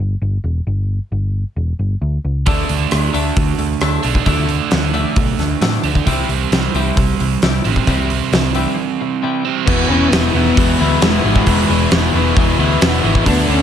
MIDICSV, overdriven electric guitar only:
0, 0, Header, 1, 2, 480
1, 0, Start_track
1, 0, Tempo, 450450
1, 702, Time_signature, 4, 2, 24, 8
1, 14516, End_track
2, 0, Start_track
2, 0, Title_t, "Overdriven electric guitar"
2, 0, Program_c, 0, 29
2, 2621, Note_on_c, 0, 50, 78
2, 2639, Note_on_c, 0, 57, 77
2, 2650, Note_on_c, 0, 62, 82
2, 4277, Note_off_c, 0, 62, 0
2, 4285, Note_off_c, 0, 50, 0
2, 4288, Note_off_c, 0, 57, 0
2, 4290, Note_on_c, 0, 62, 76
2, 4301, Note_on_c, 0, 57, 64
2, 4316, Note_on_c, 0, 50, 59
2, 4517, Note_off_c, 0, 50, 0
2, 4520, Note_off_c, 0, 62, 0
2, 4526, Note_off_c, 0, 57, 0
2, 4530, Note_on_c, 0, 50, 82
2, 4545, Note_on_c, 0, 57, 81
2, 4558, Note_on_c, 0, 62, 84
2, 6201, Note_off_c, 0, 50, 0
2, 6204, Note_off_c, 0, 62, 0
2, 6209, Note_off_c, 0, 57, 0
2, 6217, Note_on_c, 0, 62, 66
2, 6235, Note_on_c, 0, 57, 73
2, 6245, Note_on_c, 0, 50, 62
2, 6444, Note_off_c, 0, 62, 0
2, 6453, Note_off_c, 0, 50, 0
2, 6454, Note_off_c, 0, 57, 0
2, 6457, Note_on_c, 0, 48, 83
2, 6478, Note_on_c, 0, 55, 86
2, 6485, Note_on_c, 0, 60, 83
2, 8126, Note_off_c, 0, 48, 0
2, 8131, Note_off_c, 0, 60, 0
2, 8137, Note_off_c, 0, 55, 0
2, 8144, Note_on_c, 0, 60, 69
2, 8157, Note_on_c, 0, 55, 72
2, 8168, Note_on_c, 0, 48, 65
2, 8363, Note_off_c, 0, 48, 0
2, 8369, Note_off_c, 0, 60, 0
2, 8376, Note_off_c, 0, 55, 0
2, 8376, Note_on_c, 0, 48, 77
2, 8395, Note_on_c, 0, 55, 91
2, 8404, Note_on_c, 0, 60, 90
2, 10046, Note_off_c, 0, 48, 0
2, 10052, Note_off_c, 0, 60, 0
2, 10056, Note_off_c, 0, 55, 0
2, 10065, Note_on_c, 0, 60, 81
2, 10083, Note_on_c, 0, 55, 73
2, 10093, Note_on_c, 0, 48, 64
2, 10290, Note_off_c, 0, 60, 0
2, 10299, Note_off_c, 0, 55, 0
2, 10304, Note_off_c, 0, 48, 0
2, 10309, Note_on_c, 0, 40, 93
2, 10315, Note_on_c, 0, 47, 93
2, 10317, Note_on_c, 0, 52, 106
2, 10543, Note_off_c, 0, 40, 0
2, 10546, Note_off_c, 0, 47, 0
2, 10547, Note_on_c, 0, 40, 86
2, 10552, Note_off_c, 0, 52, 0
2, 10556, Note_on_c, 0, 52, 85
2, 10559, Note_on_c, 0, 47, 91
2, 10785, Note_off_c, 0, 47, 0
2, 10788, Note_off_c, 0, 40, 0
2, 10793, Note_on_c, 0, 40, 88
2, 10797, Note_on_c, 0, 47, 93
2, 10798, Note_off_c, 0, 52, 0
2, 10803, Note_on_c, 0, 52, 102
2, 11013, Note_off_c, 0, 47, 0
2, 11016, Note_off_c, 0, 40, 0
2, 11020, Note_on_c, 0, 40, 78
2, 11026, Note_on_c, 0, 47, 90
2, 11029, Note_off_c, 0, 52, 0
2, 11033, Note_on_c, 0, 52, 97
2, 11257, Note_off_c, 0, 40, 0
2, 11261, Note_off_c, 0, 47, 0
2, 11263, Note_off_c, 0, 52, 0
2, 11269, Note_on_c, 0, 40, 88
2, 11274, Note_on_c, 0, 47, 104
2, 11276, Note_on_c, 0, 52, 112
2, 11489, Note_off_c, 0, 40, 0
2, 11495, Note_off_c, 0, 52, 0
2, 11497, Note_off_c, 0, 47, 0
2, 11501, Note_on_c, 0, 40, 88
2, 11508, Note_on_c, 0, 52, 94
2, 11510, Note_on_c, 0, 47, 92
2, 11726, Note_off_c, 0, 40, 0
2, 11730, Note_off_c, 0, 47, 0
2, 11734, Note_off_c, 0, 52, 0
2, 11739, Note_on_c, 0, 40, 89
2, 11743, Note_on_c, 0, 47, 101
2, 11747, Note_on_c, 0, 52, 104
2, 11967, Note_off_c, 0, 40, 0
2, 11970, Note_off_c, 0, 47, 0
2, 11973, Note_off_c, 0, 52, 0
2, 11979, Note_on_c, 0, 40, 82
2, 11983, Note_on_c, 0, 47, 88
2, 11986, Note_on_c, 0, 52, 85
2, 12212, Note_off_c, 0, 40, 0
2, 12217, Note_off_c, 0, 47, 0
2, 12219, Note_off_c, 0, 52, 0
2, 12225, Note_on_c, 0, 40, 88
2, 12229, Note_on_c, 0, 47, 89
2, 12232, Note_on_c, 0, 52, 95
2, 12447, Note_off_c, 0, 40, 0
2, 12451, Note_off_c, 0, 47, 0
2, 12452, Note_off_c, 0, 52, 0
2, 12460, Note_on_c, 0, 40, 81
2, 12464, Note_on_c, 0, 47, 85
2, 12465, Note_on_c, 0, 52, 94
2, 12682, Note_off_c, 0, 40, 0
2, 12690, Note_off_c, 0, 47, 0
2, 12690, Note_off_c, 0, 52, 0
2, 12695, Note_on_c, 0, 40, 89
2, 12702, Note_on_c, 0, 52, 106
2, 12703, Note_on_c, 0, 47, 97
2, 12928, Note_off_c, 0, 40, 0
2, 12934, Note_off_c, 0, 47, 0
2, 12939, Note_off_c, 0, 52, 0
2, 12941, Note_on_c, 0, 40, 92
2, 12947, Note_on_c, 0, 47, 94
2, 12952, Note_on_c, 0, 52, 80
2, 13169, Note_off_c, 0, 40, 0
2, 13178, Note_off_c, 0, 47, 0
2, 13182, Note_on_c, 0, 40, 97
2, 13183, Note_off_c, 0, 52, 0
2, 13191, Note_on_c, 0, 47, 100
2, 13196, Note_on_c, 0, 52, 98
2, 13408, Note_off_c, 0, 40, 0
2, 13409, Note_off_c, 0, 47, 0
2, 13417, Note_off_c, 0, 52, 0
2, 13421, Note_on_c, 0, 40, 90
2, 13422, Note_on_c, 0, 47, 98
2, 13430, Note_on_c, 0, 52, 101
2, 13651, Note_off_c, 0, 40, 0
2, 13658, Note_off_c, 0, 47, 0
2, 13658, Note_off_c, 0, 52, 0
2, 13664, Note_on_c, 0, 40, 99
2, 13670, Note_on_c, 0, 47, 109
2, 13671, Note_on_c, 0, 52, 102
2, 13872, Note_off_c, 0, 40, 0
2, 13882, Note_off_c, 0, 47, 0
2, 13884, Note_on_c, 0, 40, 84
2, 13885, Note_off_c, 0, 52, 0
2, 13895, Note_on_c, 0, 47, 82
2, 13898, Note_on_c, 0, 52, 98
2, 14118, Note_off_c, 0, 40, 0
2, 14123, Note_off_c, 0, 47, 0
2, 14125, Note_off_c, 0, 52, 0
2, 14132, Note_on_c, 0, 50, 93
2, 14135, Note_on_c, 0, 57, 102
2, 14139, Note_on_c, 0, 62, 98
2, 14366, Note_off_c, 0, 50, 0
2, 14371, Note_on_c, 0, 50, 82
2, 14374, Note_off_c, 0, 57, 0
2, 14378, Note_on_c, 0, 57, 95
2, 14380, Note_off_c, 0, 62, 0
2, 14384, Note_on_c, 0, 62, 87
2, 14516, Note_off_c, 0, 50, 0
2, 14516, Note_off_c, 0, 57, 0
2, 14516, Note_off_c, 0, 62, 0
2, 14516, End_track
0, 0, End_of_file